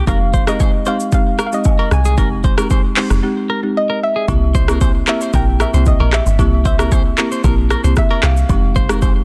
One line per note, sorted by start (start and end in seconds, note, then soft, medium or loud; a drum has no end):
0.07 0.39 F1 loud
0.07 0.23 G#3 medium
0.07 0.24 C4 medium
0.07 0.24 D#4 medium
0.07 0.24 G4 loud
0.07 0.18 A#4 medium
0.07 0.49 F5 medium
0.07 kick loud
0.07 high agogo medium
0.07 shaker medium
0.34 0.44 C5 medium
0.34 kick medium
0.34 shaker medium
0.47 0.63 G#3 medium
0.47 0.63 C4 medium
0.47 0.63 D#4 medium
0.47 0.63 G4 medium
0.47 0.60 A#4 medium
0.47 0.88 D#5 medium
0.47 cross-stick loud
0.47 high agogo medium
0.47 shaker medium
0.60 0.70 C5 medium
0.60 kick medium
0.60 low woodblock medium
0.60 shaker medium
0.86 1.02 G#3 medium
0.86 1.03 C4 medium
0.86 1.03 D#4 medium
0.86 1.03 G4 medium
0.86 0.97 C5 medium
0.86 1.13 F5 medium
0.86 high agogo medium
0.86 shaker medium
1.00 shaker medium
1.12 1.29 G#3 medium
1.12 1.29 C4 medium
1.12 1.29 D#4 medium
1.12 1.29 G4 loud
1.12 1.45 F5 medium
1.12 kick loud
1.12 shaker medium
1.39 1.49 A#4 medium
1.39 cross-stick loud
1.39 high agogo medium
1.39 shaker medium
1.46 1.53 F5 medium
1.52 1.68 G#3 medium
1.52 1.68 C4 medium
1.52 1.68 D#4 medium
1.52 1.68 G4 medium
1.52 1.93 D#5 medium
1.52 shaker medium
1.64 kick loud
1.64 low woodblock medium
1.64 shaker medium
1.79 1.88 A#4 medium
1.79 high agogo medium
1.91 2.19 C2 medium
1.91 3.46 G#5 loud
1.91 cross-stick medium
1.91 shaker soft
2.05 2.15 G#4 medium
2.05 shaker medium
2.18 2.49 F1 loud
2.18 2.34 G#3 medium
2.18 2.34 C4 medium
2.18 2.34 D#4 medium
2.18 2.34 G4 loud
2.18 2.28 A#4 medium
2.18 kick loud
2.18 high agogo medium
2.18 shaker medium
2.44 2.54 C5 medium
2.44 kick medium
2.44 shaker medium
2.58 2.73 G#3 medium
2.58 2.73 C4 medium
2.58 2.73 D#4 medium
2.58 2.74 G4 medium
2.58 2.67 A#4 medium
2.58 cross-stick loud
2.58 high agogo medium
2.58 shaker medium
2.70 2.81 C5 medium
2.70 kick medium
2.70 low woodblock medium
2.70 shaker medium
2.96 3.13 G#3 medium
2.96 3.13 C4 medium
2.96 3.13 D#4 medium
2.96 3.13 G4 medium
2.96 3.07 C5 medium
2.96 clap medium
2.96 open hi-hat medium
2.96 high agogo medium
2.96 shaker medium
3.10 3.21 F1 medium
3.10 cross-stick medium
3.10 shaker medium
3.23 3.39 G#3 medium
3.23 3.39 C4 medium
3.23 3.39 D#4 medium
3.23 3.40 G4 loud
3.50 3.60 A#4 medium
3.63 3.78 G#3 medium
3.63 3.79 C4 medium
3.63 3.79 D#4 medium
3.63 3.79 G4 medium
3.77 4.04 D#5 loud
3.90 3.99 A#4 medium
4.03 5.08 E5 loud
4.16 4.25 G#4 medium
4.28 5.03 C2 loud
4.28 4.45 A#3 medium
4.28 4.45 C4 medium
4.28 4.45 E4 medium
4.28 4.45 G4 loud
4.28 kick loud
4.28 high agogo medium
4.28 shaker medium
4.55 4.69 C5 medium
4.55 kick medium
4.55 shaker medium
4.68 4.84 A#3 medium
4.68 4.84 C4 medium
4.68 4.84 E4 medium
4.68 4.84 G4 medium
4.68 4.78 A#4 medium
4.68 cross-stick loud
4.68 high agogo medium
4.68 shaker medium
4.81 4.91 C5 medium
4.81 kick medium
4.81 low woodblock medium
4.81 shaker medium
5.07 5.24 A#3 medium
5.07 5.24 C4 medium
5.07 5.24 E4 medium
5.07 5.24 G4 medium
5.07 5.21 A#4 medium
5.07 5.35 E5 loud
5.07 clap loud
5.07 high agogo medium
5.07 shaker medium
5.21 5.30 C5 medium
5.21 shaker medium
5.33 5.65 A#1 loud
5.33 5.50 A#3 medium
5.33 5.50 C4 medium
5.33 5.50 E4 medium
5.33 5.50 G4 loud
5.33 5.44 A#4 medium
5.33 5.59 G5 loud
5.33 kick loud
5.33 shaker medium
5.60 5.70 A#4 medium
5.60 5.88 E5 medium
5.60 cross-stick loud
5.60 high agogo medium
5.60 shaker medium
5.73 5.94 C2 medium
5.73 5.89 A#3 medium
5.73 5.89 C4 medium
5.73 5.89 E4 medium
5.73 5.89 G4 medium
5.73 5.83 C5 medium
5.73 shaker medium
5.86 5.99 D#5 loud
5.86 kick medium
5.86 shaker medium
6.00 6.21 A#1 medium
6.00 6.10 A#4 medium
6.00 high agogo medium
6.13 6.23 G4 medium
6.13 6.66 E5 loud
6.13 cross-stick medium
6.13 clap medium
6.13 shaker medium
6.26 6.40 G1 medium
6.26 shaker medium
6.39 7.14 C2 loud
6.39 6.55 A#3 loud
6.39 6.55 C4 medium
6.39 6.55 E4 medium
6.39 6.55 G4 loud
6.39 kick loud
6.39 high agogo medium
6.39 shaker medium
6.65 6.76 C5 medium
6.65 7.94 E5 loud
6.65 kick medium
6.65 shaker medium
6.79 6.94 A#3 medium
6.79 6.94 C4 medium
6.79 6.94 E4 medium
6.79 6.95 G4 medium
6.79 6.92 A#4 medium
6.79 cross-stick loud
6.79 high agogo medium
6.79 shaker medium
6.92 7.02 C5 medium
6.92 kick medium
6.92 low woodblock medium
6.92 shaker medium
7.18 7.34 A#3 medium
7.18 7.34 C4 medium
7.18 7.34 E4 medium
7.18 7.34 G4 medium
7.18 7.28 A#4 medium
7.18 clap medium
7.18 high agogo medium
7.18 shaker medium
7.32 7.41 C5 medium
7.32 shaker medium
7.44 7.76 A#1 medium
7.44 7.60 A#3 medium
7.44 7.60 C4 medium
7.44 7.60 E4 medium
7.44 7.61 G4 loud
7.44 7.54 A#4 medium
7.44 kick loud
7.44 shaker medium
7.71 7.81 A#4 medium
7.71 cross-stick loud
7.71 high agogo medium
7.71 shaker medium
7.84 7.94 C2 medium
7.84 7.99 A#3 medium
7.84 8.00 C4 medium
7.84 8.00 E4 medium
7.84 8.00 G4 medium
7.84 7.94 C5 medium
7.84 shaker medium
7.96 8.25 E5 medium
7.96 kick loud
7.96 cross-stick medium
7.96 shaker medium
8.10 8.20 A#4 medium
8.10 high agogo medium
8.23 8.44 C2 medium
8.23 8.33 G4 medium
8.23 8.99 F5 medium
8.23 cross-stick medium
8.23 clap medium
8.23 shaker medium
8.37 shaker medium
8.49 9.24 F1 loud
8.49 8.66 G#3 loud
8.49 8.66 C4 medium
8.49 8.66 D#4 medium
8.49 8.66 G4 loud
8.49 kick loud
8.49 high agogo medium
8.49 shaker medium
8.76 8.89 C5 medium
8.76 kick loud
8.76 shaker medium
8.89 9.05 G#3 medium
8.89 9.05 C4 medium
8.89 9.05 D#4 medium
8.89 9.05 G4 medium
8.89 8.99 A#4 medium
8.89 cross-stick loud
8.89 high agogo medium
8.89 shaker medium
9.02 9.12 C5 medium
9.02 kick medium
9.02 low woodblock medium
9.02 shaker medium